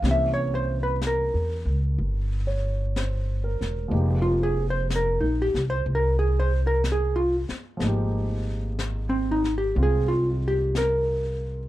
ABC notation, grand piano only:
X:1
M:4/4
L:1/16
Q:"Swing" 1/4=62
K:Fm
V:1 name="Grand piano"
z8 z2 d2 c2 B2- | B z12 z3 | z16 |]
V:2 name="Grand piano"
[=E,B,CDG]16 | [F,A,B,EG]16 | [F,A,B,EG]8 [A,CF]8 |]